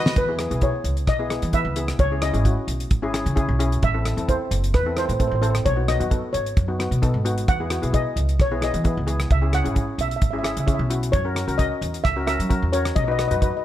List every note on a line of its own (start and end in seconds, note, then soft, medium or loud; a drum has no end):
0.00 0.16 D#4 medium
0.00 0.16 F#4 medium
0.00 0.17 B4 loud
0.00 0.16 D#5 loud
0.06 snare medium
0.16 0.45 E2 medium
0.16 0.64 B4 medium
0.16 kick loud
0.16 closed hi-hat medium
0.28 0.35 B3 medium
0.28 0.35 E4 medium
0.28 0.35 G#4 medium
0.39 0.46 B3 medium
0.39 0.46 E4 soft
0.39 0.47 G#4 medium
0.39 cross-stick medium
0.39 closed hi-hat medium
0.51 0.70 B1 medium
0.51 0.57 B3 medium
0.51 0.58 E4 medium
0.51 0.58 G#4 medium
0.51 closed hi-hat soft
0.61 0.97 B3 medium
0.61 0.97 E4 medium
0.61 0.97 G#4 medium
0.61 1.10 C#5 medium
0.61 kick medium
0.61 closed hi-hat soft
0.84 1.07 C#2 medium
0.84 closed hi-hat medium
0.97 closed hi-hat soft
1.07 1.37 B1 medium
1.07 1.55 D#5 loud
1.07 kick medium
1.07 cross-stick medium
1.07 closed hi-hat medium
1.19 1.26 B3 medium
1.19 1.26 E4 medium
1.19 1.26 G#4 medium
1.30 1.45 B3 medium
1.30 1.45 E4 medium
1.30 1.45 G#4 medium
1.30 cross-stick medium
1.30 closed hi-hat medium
1.42 1.62 E3 medium
1.42 closed hi-hat medium
1.53 1.68 B3 medium
1.53 1.68 E4 medium
1.53 1.68 B4 medium
1.53 1.96 E5 medium
1.53 kick medium
1.53 closed hi-hat medium
1.65 1.93 C#2 medium
1.76 1.97 B3 medium
1.76 1.97 E4 medium
1.76 1.97 G#4 medium
1.76 closed hi-hat medium
1.88 cross-stick medium
1.88 closed hi-hat medium
1.99 2.28 C#2 medium
1.99 2.10 C#5 loud
1.99 kick loud
1.99 closed hi-hat medium
2.11 2.18 C#4 medium
2.11 2.18 E4 medium
2.11 2.18 G#4 medium
2.22 2.29 C#4 medium
2.22 2.29 E4 medium
2.22 2.30 G#4 medium
2.22 3.56 D#5 medium
2.22 cross-stick medium
2.22 closed hi-hat medium
2.33 2.53 G#1 medium
2.33 2.40 C#4 medium
2.33 2.40 E4 medium
2.33 2.41 G#4 medium
2.33 closed hi-hat medium
2.44 2.80 C#4 medium
2.44 2.80 E4 medium
2.44 2.80 F#4 medium
2.44 kick medium
2.44 closed hi-hat medium
2.67 2.91 B1 medium
2.67 closed hi-hat medium
2.80 closed hi-hat medium
2.91 3.20 G#1 medium
2.91 kick medium
2.91 closed hi-hat medium
3.02 3.09 C#4 medium
3.02 3.09 E4 medium
3.02 3.10 G#4 loud
3.13 3.28 C#4 medium
3.13 3.28 E4 medium
3.13 3.28 G#4 medium
3.13 cross-stick medium
3.13 closed hi-hat medium
3.26 3.45 C#3 medium
3.26 closed hi-hat medium
3.36 3.50 C#4 medium
3.36 3.51 E4 medium
3.36 3.51 G#4 loud
3.36 kick medium
3.36 closed hi-hat medium
3.49 3.77 B1 medium
3.59 3.80 C#4 medium
3.59 3.80 E4 medium
3.59 3.80 G#4 medium
3.59 closed hi-hat medium
3.72 closed hi-hat medium
3.83 4.12 A1 medium
3.83 4.30 E5 loud
3.83 kick medium
3.83 closed hi-hat soft
3.94 4.01 C4 medium
3.94 4.01 E4 medium
3.94 4.01 A4 medium
4.05 4.13 C4 medium
4.05 4.13 E4 medium
4.05 4.13 A4 medium
4.05 cross-stick medium
4.05 closed hi-hat medium
4.17 4.36 E2 medium
4.17 4.24 C4 medium
4.17 4.24 E4 medium
4.17 4.24 A4 medium
4.17 closed hi-hat medium
4.28 4.63 C4 medium
4.28 4.63 E4 medium
4.28 4.63 A4 medium
4.28 4.76 C5 medium
4.28 kick medium
4.28 closed hi-hat medium
4.51 4.76 F#1 medium
4.51 closed hi-hat medium
4.64 closed hi-hat medium
4.74 5.03 E2 medium
4.74 4.98 B4 medium
4.74 kick medium
4.74 cross-stick medium
4.74 closed hi-hat soft
4.86 4.92 C4 medium
4.86 4.92 E4 medium
4.86 4.93 A4 medium
4.96 5.11 C4 medium
4.96 5.11 E4 medium
4.96 5.11 A4 medium
4.96 5.04 C5 medium
4.96 cross-stick medium
4.96 closed hi-hat medium
5.06 5.28 A2 medium
5.06 5.12 C5 medium
5.06 closed hi-hat medium
5.13 5.19 C5 medium
5.19 5.34 C4 medium
5.19 5.34 E4 medium
5.19 5.34 A4 medium
5.19 5.26 C5 medium
5.19 kick medium
5.19 closed hi-hat soft
5.28 5.60 A1 medium
5.28 5.34 C5 medium
5.35 5.40 C5 medium
5.42 5.63 C4 medium
5.42 5.63 E4 medium
5.42 5.63 A4 medium
5.42 5.49 C5 medium
5.42 closed hi-hat medium
5.50 5.57 C5 medium
5.55 cross-stick medium
5.55 closed hi-hat medium
5.65 5.95 B1 loud
5.65 5.89 C#5 medium
5.65 kick medium
5.65 closed hi-hat medium
5.76 5.83 B3 medium
5.76 5.83 D#4 medium
5.76 5.83 F#4 medium
5.88 5.95 B3 medium
5.88 5.96 D#4 medium
5.88 5.96 F#4 medium
5.88 6.31 D#5 medium
5.88 cross-stick medium
5.88 closed hi-hat medium
6.00 6.19 F#2 medium
6.00 6.06 B3 medium
6.00 6.06 D#4 medium
6.00 6.07 F#4 medium
6.00 closed hi-hat soft
6.10 6.46 B3 medium
6.10 6.46 D#4 medium
6.10 6.46 A4 medium
6.10 kick medium
6.10 closed hi-hat medium
6.33 6.58 G#1 medium
6.33 7.21 C#5 medium
6.33 closed hi-hat medium
6.46 closed hi-hat medium
6.57 6.86 F#2 medium
6.57 kick loud
6.57 closed hi-hat soft
6.68 6.75 B3 medium
6.68 6.75 D#4 medium
6.68 6.75 F#4 medium
6.79 6.94 B3 medium
6.79 6.94 D#4 medium
6.79 6.94 F#4 medium
6.79 cross-stick medium
6.79 closed hi-hat medium
6.91 7.11 B2 medium
6.91 closed hi-hat medium
7.02 7.17 B3 medium
7.02 7.17 D#4 medium
7.02 7.17 A4 medium
7.02 kick medium
7.02 closed hi-hat medium
7.14 7.42 G#1 medium
7.25 7.46 B3 medium
7.25 7.46 D#4 medium
7.25 7.46 F#4 medium
7.25 closed hi-hat medium
7.38 closed hi-hat medium
7.48 7.77 E2 medium
7.48 7.95 F#5 loud
7.48 kick loud
7.48 closed hi-hat medium
7.60 7.66 B3 medium
7.60 7.67 E4 medium
7.60 7.67 G#4 medium
7.70 7.78 B3 medium
7.70 7.78 E4 medium
7.70 7.78 F#4 medium
7.70 cross-stick medium
7.70 closed hi-hat medium
7.82 8.02 B1 medium
7.82 7.89 B3 medium
7.82 7.89 E4 medium
7.82 7.89 G#4 medium
7.82 closed hi-hat medium
7.92 8.28 B3 medium
7.92 8.28 E4 medium
7.92 8.29 G#4 medium
7.92 8.41 D#5 medium
7.92 kick medium
7.92 closed hi-hat medium
8.16 8.39 C#2 medium
8.16 closed hi-hat medium
8.29 closed hi-hat medium
8.39 8.69 B1 medium
8.39 8.64 C#5 medium
8.39 kick loud
8.39 cross-stick medium
8.39 closed hi-hat soft
8.51 8.58 B3 medium
8.51 8.58 E4 medium
8.51 8.58 G#4 medium
8.61 8.76 B3 medium
8.61 8.76 E4 medium
8.61 8.76 G#4 medium
8.61 9.34 D#5 medium
8.61 cross-stick medium
8.61 closed hi-hat medium
8.74 8.93 E3 medium
8.74 closed hi-hat medium
8.84 8.99 B3 medium
8.84 8.99 E4 medium
8.84 8.99 G#4 medium
8.84 kick medium
8.84 closed hi-hat soft
8.97 9.25 C#2 medium
9.07 9.28 B3 medium
9.07 9.28 E4 medium
9.07 9.28 G#4 medium
9.07 closed hi-hat medium
9.20 cross-stick medium
9.20 closed hi-hat medium
9.30 9.60 C#2 loud
9.30 9.55 E5 medium
9.30 kick medium
9.30 closed hi-hat medium
9.42 9.49 C#4 medium
9.42 9.49 E4 medium
9.42 9.49 G#4 medium
9.52 9.60 C#4 medium
9.52 9.60 E4 medium
9.52 9.61 G#4 medium
9.52 9.97 F#5 loud
9.52 cross-stick medium
9.52 closed hi-hat medium
9.64 9.85 G#1 medium
9.64 9.71 C#4 medium
9.64 9.72 E4 medium
9.64 9.72 G#4 medium
9.64 closed hi-hat medium
9.75 10.11 C#4 medium
9.75 10.11 E4 medium
9.75 10.11 G#4 medium
9.75 kick medium
9.75 closed hi-hat medium
9.98 10.21 B1 medium
9.98 10.07 E5 medium
9.98 closed hi-hat medium
10.08 10.15 E5 soft
10.08 closed hi-hat soft
10.16 10.22 E5 medium
10.21 10.51 G#1 medium
10.21 kick medium
10.21 closed hi-hat medium
10.31 10.40 C#4 medium
10.31 10.40 E4 medium
10.31 10.40 G#4 medium
10.31 10.37 E5 medium
10.39 10.44 E5 medium
10.43 10.58 C#4 medium
10.43 10.59 E4 medium
10.43 10.59 G#4 medium
10.43 10.51 E5 medium
10.43 cross-stick medium
10.43 closed hi-hat medium
10.57 10.76 C#3 medium
10.57 10.66 E5 soft
10.57 closed hi-hat medium
10.67 10.82 C#4 medium
10.67 10.82 E4 medium
10.67 10.82 G#4 medium
10.67 10.73 E5 soft
10.67 kick medium
10.67 closed hi-hat medium
10.75 10.82 E5 medium
10.79 11.08 B1 medium
10.90 11.11 C#4 medium
10.90 11.11 E4 medium
10.90 11.11 F#4 medium
10.90 closed hi-hat medium
11.03 closed hi-hat medium
11.12 11.43 F#2 loud
11.12 11.60 C#5 medium
11.12 kick loud
11.12 closed hi-hat medium
11.25 11.32 C#4 medium
11.25 11.32 F#4 medium
11.25 11.32 A#4 medium
11.35 11.43 C#4 medium
11.35 11.43 F#4 medium
11.35 11.43 A#4 medium
11.35 cross-stick medium
11.35 closed hi-hat medium
11.47 11.67 C#2 medium
11.47 11.54 C#4 medium
11.47 11.55 F#4 medium
11.47 11.55 A#4 medium
11.47 closed hi-hat medium
11.58 11.94 C#4 medium
11.58 11.94 F#4 medium
11.58 11.94 A#4 medium
11.58 12.06 D#5 loud
11.58 kick medium
11.58 closed hi-hat medium
11.81 12.05 E2 medium
11.81 closed hi-hat medium
11.94 closed hi-hat medium
12.04 12.34 C#2 medium
12.04 12.26 E5 loud
12.04 kick medium
12.04 cross-stick medium
12.04 closed hi-hat medium
12.16 12.23 C#4 medium
12.16 12.23 F#4 medium
12.16 12.23 A#4 medium
12.27 12.42 C#4 medium
12.27 12.42 F#4 medium
12.27 12.42 A#4 medium
12.27 12.74 E5 medium
12.27 cross-stick medium
12.27 closed hi-hat medium
12.39 12.59 F#3 medium
12.39 closed hi-hat medium
12.50 12.64 C#4 medium
12.50 12.64 F#4 medium
12.50 12.65 A#4 medium
12.50 kick medium
12.50 closed hi-hat medium
12.62 12.91 E2 medium
12.72 12.94 C#4 medium
12.72 12.94 F#4 medium
12.72 12.94 A#4 medium
12.72 12.97 C#5 medium
12.72 closed hi-hat medium
12.85 cross-stick medium
12.85 closed hi-hat medium
12.96 13.25 B1 medium
12.96 13.03 D#5 medium
12.96 kick loud
12.96 closed hi-hat medium
13.04 13.14 D#4 medium
13.04 13.15 F#4 medium
13.04 13.15 B4 medium
13.04 13.10 D#5 medium
13.12 13.18 D#5 medium
13.19 13.26 D#4 medium
13.19 13.26 F#4 medium
13.19 13.26 B4 medium
13.19 13.26 D#5 medium
13.19 cross-stick medium
13.19 closed hi-hat medium
13.28 13.50 F#2 medium
13.28 13.37 D#4 medium
13.28 13.38 F#4 medium
13.28 13.38 B4 medium
13.28 13.34 D#5 medium
13.28 closed hi-hat medium
13.35 13.41 D#5 soft
13.41 13.65 D#4 medium
13.41 13.65 F#4 medium
13.41 13.65 B4 medium
13.41 13.49 D#5 medium
13.41 kick medium
13.41 closed hi-hat medium
13.50 13.56 D#5 soft
13.57 13.63 D#5 medium